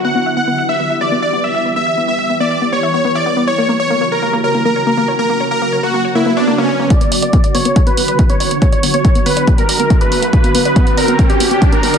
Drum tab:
HH |----------------|----------------|----------------|----------------|
BD |----------------|----------------|----------------|----------------|

HH |xxoxxxoxxxoxxxox|xxoxxxoxxxoxxxox|xxoxxxoxxxoxxxox|
BD |o---o---o---o---|o---o---o---o---|o---o---o---o---|